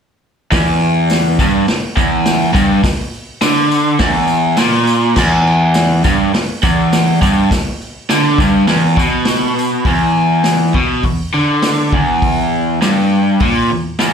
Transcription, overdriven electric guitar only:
0, 0, Header, 1, 3, 480
1, 0, Start_track
1, 0, Key_signature, 1, "minor"
1, 0, Tempo, 582524
1, 432, Time_signature, 4, 2, 24, 8
1, 6674, Tempo, 591133
1, 11572, End_track
2, 0, Start_track
2, 0, Title_t, "Overdriven electric guitar"
2, 0, Program_c, 0, 29
2, 423, Note_on_c, 0, 40, 110
2, 1137, Note_off_c, 0, 40, 0
2, 1152, Note_on_c, 0, 43, 96
2, 1382, Note_off_c, 0, 43, 0
2, 1620, Note_on_c, 0, 40, 98
2, 2085, Note_off_c, 0, 40, 0
2, 2089, Note_on_c, 0, 43, 104
2, 2329, Note_off_c, 0, 43, 0
2, 2817, Note_on_c, 0, 50, 116
2, 3290, Note_on_c, 0, 40, 105
2, 3292, Note_off_c, 0, 50, 0
2, 3769, Note_off_c, 0, 40, 0
2, 3772, Note_on_c, 0, 46, 113
2, 4250, Note_off_c, 0, 46, 0
2, 4267, Note_on_c, 0, 40, 118
2, 4978, Note_off_c, 0, 40, 0
2, 4981, Note_on_c, 0, 43, 108
2, 5216, Note_off_c, 0, 43, 0
2, 5468, Note_on_c, 0, 40, 103
2, 5942, Note_off_c, 0, 40, 0
2, 5947, Note_on_c, 0, 43, 102
2, 6181, Note_off_c, 0, 43, 0
2, 6681, Note_on_c, 0, 50, 103
2, 6908, Note_off_c, 0, 50, 0
2, 6915, Note_on_c, 0, 43, 103
2, 7141, Note_off_c, 0, 43, 0
2, 7144, Note_on_c, 0, 40, 109
2, 7378, Note_off_c, 0, 40, 0
2, 7382, Note_on_c, 0, 47, 99
2, 8095, Note_off_c, 0, 47, 0
2, 8102, Note_on_c, 0, 40, 115
2, 8816, Note_off_c, 0, 40, 0
2, 8821, Note_on_c, 0, 47, 93
2, 9056, Note_off_c, 0, 47, 0
2, 9068, Note_on_c, 0, 40, 64
2, 9259, Note_off_c, 0, 40, 0
2, 9304, Note_on_c, 0, 50, 99
2, 9778, Note_off_c, 0, 50, 0
2, 9787, Note_on_c, 0, 40, 93
2, 10501, Note_off_c, 0, 40, 0
2, 10506, Note_on_c, 0, 43, 106
2, 10981, Note_off_c, 0, 43, 0
2, 10989, Note_on_c, 0, 46, 106
2, 11223, Note_off_c, 0, 46, 0
2, 11225, Note_on_c, 0, 40, 76
2, 11420, Note_off_c, 0, 40, 0
2, 11465, Note_on_c, 0, 40, 104
2, 11572, Note_off_c, 0, 40, 0
2, 11572, End_track
3, 0, Start_track
3, 0, Title_t, "Muted overdriven electric guitar strokes"
3, 1388, Note_on_c, 9, 29, 58
3, 1470, Note_off_c, 9, 29, 0
3, 2337, Note_on_c, 9, 29, 61
3, 2419, Note_off_c, 9, 29, 0
3, 5226, Note_on_c, 9, 29, 57
3, 5309, Note_off_c, 9, 29, 0
3, 6200, Note_on_c, 9, 29, 62
3, 6282, Note_off_c, 9, 29, 0
3, 11572, End_track
0, 0, End_of_file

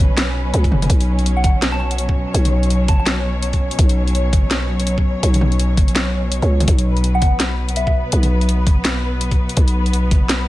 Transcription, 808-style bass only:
0, 0, Header, 1, 2, 480
1, 0, Start_track
1, 0, Tempo, 361446
1, 1190, Time_signature, 4, 2, 24, 8
1, 13917, End_track
2, 0, Start_track
2, 0, Title_t, "808-style bass"
2, 0, Program_c, 0, 38
2, 0, Note_on_c, 0, 30, 91
2, 134, Note_on_c, 0, 35, 85
2, 154, Note_off_c, 0, 30, 0
2, 707, Note_off_c, 0, 35, 0
2, 715, Note_on_c, 0, 37, 100
2, 953, Note_on_c, 0, 30, 99
2, 973, Note_off_c, 0, 37, 0
2, 1176, Note_off_c, 0, 30, 0
2, 1191, Note_on_c, 0, 35, 103
2, 1912, Note_on_c, 0, 30, 91
2, 1931, Note_off_c, 0, 35, 0
2, 2057, Note_on_c, 0, 35, 85
2, 2077, Note_off_c, 0, 30, 0
2, 2996, Note_off_c, 0, 35, 0
2, 3111, Note_on_c, 0, 35, 102
2, 3831, Note_on_c, 0, 30, 91
2, 3851, Note_off_c, 0, 35, 0
2, 3975, Note_on_c, 0, 35, 82
2, 3995, Note_off_c, 0, 30, 0
2, 4916, Note_off_c, 0, 35, 0
2, 5028, Note_on_c, 0, 35, 103
2, 5751, Note_on_c, 0, 30, 93
2, 5770, Note_off_c, 0, 35, 0
2, 5899, Note_on_c, 0, 35, 85
2, 5919, Note_off_c, 0, 30, 0
2, 6837, Note_off_c, 0, 35, 0
2, 6946, Note_on_c, 0, 35, 100
2, 7666, Note_on_c, 0, 30, 93
2, 7686, Note_off_c, 0, 35, 0
2, 7810, Note_on_c, 0, 35, 84
2, 7830, Note_off_c, 0, 30, 0
2, 8523, Note_off_c, 0, 35, 0
2, 8531, Note_on_c, 0, 37, 94
2, 8857, Note_off_c, 0, 37, 0
2, 8871, Note_on_c, 0, 35, 98
2, 9590, Note_on_c, 0, 30, 89
2, 9610, Note_off_c, 0, 35, 0
2, 9730, Note_on_c, 0, 35, 81
2, 9750, Note_off_c, 0, 30, 0
2, 10673, Note_off_c, 0, 35, 0
2, 10794, Note_on_c, 0, 35, 100
2, 11511, Note_on_c, 0, 30, 91
2, 11531, Note_off_c, 0, 35, 0
2, 11651, Note_on_c, 0, 35, 83
2, 11671, Note_off_c, 0, 30, 0
2, 12593, Note_off_c, 0, 35, 0
2, 12709, Note_on_c, 0, 35, 101
2, 13433, Note_on_c, 0, 30, 92
2, 13453, Note_off_c, 0, 35, 0
2, 13576, Note_on_c, 0, 35, 83
2, 13596, Note_off_c, 0, 30, 0
2, 13917, Note_off_c, 0, 35, 0
2, 13917, End_track
0, 0, End_of_file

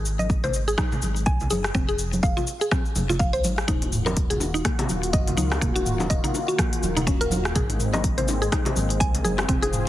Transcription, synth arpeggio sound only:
0, 0, Header, 1, 2, 480
1, 0, Start_track
1, 0, Tempo, 483871
1, 1735, Time_signature, 4, 2, 24, 8
1, 9806, End_track
2, 0, Start_track
2, 0, Title_t, "Synth arpeggio sound"
2, 0, Program_c, 0, 84
2, 192, Note_on_c, 0, 75, 72
2, 284, Note_off_c, 0, 75, 0
2, 434, Note_on_c, 0, 72, 73
2, 525, Note_off_c, 0, 72, 0
2, 672, Note_on_c, 0, 68, 73
2, 727, Note_off_c, 0, 68, 0
2, 771, Note_on_c, 0, 63, 99
2, 847, Note_off_c, 0, 63, 0
2, 1251, Note_on_c, 0, 80, 99
2, 1377, Note_off_c, 0, 80, 0
2, 1493, Note_on_c, 0, 68, 74
2, 1618, Note_off_c, 0, 68, 0
2, 1732, Note_on_c, 0, 60, 102
2, 1808, Note_off_c, 0, 60, 0
2, 1871, Note_on_c, 0, 68, 96
2, 1969, Note_off_c, 0, 68, 0
2, 2211, Note_on_c, 0, 77, 95
2, 2337, Note_off_c, 0, 77, 0
2, 2350, Note_on_c, 0, 65, 75
2, 2406, Note_off_c, 0, 65, 0
2, 2591, Note_on_c, 0, 68, 72
2, 2684, Note_off_c, 0, 68, 0
2, 2692, Note_on_c, 0, 60, 100
2, 2768, Note_off_c, 0, 60, 0
2, 3070, Note_on_c, 0, 65, 74
2, 3126, Note_off_c, 0, 65, 0
2, 3169, Note_on_c, 0, 77, 100
2, 3296, Note_off_c, 0, 77, 0
2, 3306, Note_on_c, 0, 72, 96
2, 3401, Note_off_c, 0, 72, 0
2, 3650, Note_on_c, 0, 63, 101
2, 3727, Note_off_c, 0, 63, 0
2, 4027, Note_on_c, 0, 70, 74
2, 4121, Note_off_c, 0, 70, 0
2, 4267, Note_on_c, 0, 68, 74
2, 4362, Note_off_c, 0, 68, 0
2, 4506, Note_on_c, 0, 63, 72
2, 4564, Note_off_c, 0, 63, 0
2, 4612, Note_on_c, 0, 58, 99
2, 4688, Note_off_c, 0, 58, 0
2, 5091, Note_on_c, 0, 75, 102
2, 5217, Note_off_c, 0, 75, 0
2, 5331, Note_on_c, 0, 63, 72
2, 5457, Note_off_c, 0, 63, 0
2, 5569, Note_on_c, 0, 58, 103
2, 5647, Note_off_c, 0, 58, 0
2, 5709, Note_on_c, 0, 66, 95
2, 5808, Note_off_c, 0, 66, 0
2, 6051, Note_on_c, 0, 75, 98
2, 6177, Note_off_c, 0, 75, 0
2, 6188, Note_on_c, 0, 63, 77
2, 6246, Note_off_c, 0, 63, 0
2, 6430, Note_on_c, 0, 66, 73
2, 6523, Note_off_c, 0, 66, 0
2, 6532, Note_on_c, 0, 58, 100
2, 6608, Note_off_c, 0, 58, 0
2, 6910, Note_on_c, 0, 63, 76
2, 6966, Note_off_c, 0, 63, 0
2, 7012, Note_on_c, 0, 61, 79
2, 7138, Note_off_c, 0, 61, 0
2, 7151, Note_on_c, 0, 70, 100
2, 7243, Note_off_c, 0, 70, 0
2, 7497, Note_on_c, 0, 68, 104
2, 7570, Note_off_c, 0, 68, 0
2, 7872, Note_on_c, 0, 75, 75
2, 7964, Note_off_c, 0, 75, 0
2, 8112, Note_on_c, 0, 72, 76
2, 8204, Note_off_c, 0, 72, 0
2, 8350, Note_on_c, 0, 68, 76
2, 8407, Note_off_c, 0, 68, 0
2, 8454, Note_on_c, 0, 63, 99
2, 8529, Note_off_c, 0, 63, 0
2, 8930, Note_on_c, 0, 80, 99
2, 9057, Note_off_c, 0, 80, 0
2, 9171, Note_on_c, 0, 68, 74
2, 9297, Note_off_c, 0, 68, 0
2, 9410, Note_on_c, 0, 60, 102
2, 9487, Note_off_c, 0, 60, 0
2, 9548, Note_on_c, 0, 68, 101
2, 9647, Note_off_c, 0, 68, 0
2, 9806, End_track
0, 0, End_of_file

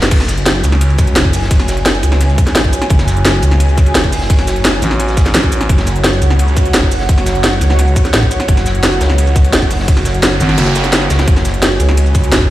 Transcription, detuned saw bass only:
0, 0, Header, 1, 2, 480
1, 0, Start_track
1, 0, Key_signature, 3, "minor"
1, 0, Tempo, 348837
1, 155, Time_signature, 4, 2, 24, 8
1, 17200, End_track
2, 0, Start_track
2, 0, Title_t, "Detuned saw bass"
2, 0, Program_c, 0, 39
2, 156, Note_on_c, 0, 30, 97
2, 856, Note_off_c, 0, 30, 0
2, 876, Note_on_c, 0, 37, 104
2, 1576, Note_off_c, 0, 37, 0
2, 1596, Note_on_c, 0, 30, 100
2, 2297, Note_off_c, 0, 30, 0
2, 2316, Note_on_c, 0, 30, 98
2, 2776, Note_off_c, 0, 30, 0
2, 2796, Note_on_c, 0, 37, 99
2, 3257, Note_off_c, 0, 37, 0
2, 3516, Note_on_c, 0, 33, 98
2, 3736, Note_off_c, 0, 33, 0
2, 3996, Note_on_c, 0, 30, 97
2, 4697, Note_off_c, 0, 30, 0
2, 4716, Note_on_c, 0, 37, 98
2, 5416, Note_off_c, 0, 37, 0
2, 5435, Note_on_c, 0, 30, 97
2, 6136, Note_off_c, 0, 30, 0
2, 6155, Note_on_c, 0, 30, 97
2, 6616, Note_off_c, 0, 30, 0
2, 7835, Note_on_c, 0, 30, 101
2, 8536, Note_off_c, 0, 30, 0
2, 8555, Note_on_c, 0, 37, 96
2, 9256, Note_off_c, 0, 37, 0
2, 9275, Note_on_c, 0, 30, 101
2, 9976, Note_off_c, 0, 30, 0
2, 9995, Note_on_c, 0, 30, 96
2, 10456, Note_off_c, 0, 30, 0
2, 10475, Note_on_c, 0, 37, 93
2, 10936, Note_off_c, 0, 37, 0
2, 11195, Note_on_c, 0, 33, 94
2, 11416, Note_off_c, 0, 33, 0
2, 11676, Note_on_c, 0, 30, 100
2, 12376, Note_off_c, 0, 30, 0
2, 12395, Note_on_c, 0, 37, 96
2, 13096, Note_off_c, 0, 37, 0
2, 13115, Note_on_c, 0, 30, 98
2, 13816, Note_off_c, 0, 30, 0
2, 13835, Note_on_c, 0, 30, 91
2, 14296, Note_off_c, 0, 30, 0
2, 15276, Note_on_c, 0, 37, 96
2, 15496, Note_off_c, 0, 37, 0
2, 15516, Note_on_c, 0, 30, 100
2, 16216, Note_off_c, 0, 30, 0
2, 16235, Note_on_c, 0, 37, 102
2, 16936, Note_off_c, 0, 37, 0
2, 16956, Note_on_c, 0, 30, 101
2, 17200, Note_off_c, 0, 30, 0
2, 17200, End_track
0, 0, End_of_file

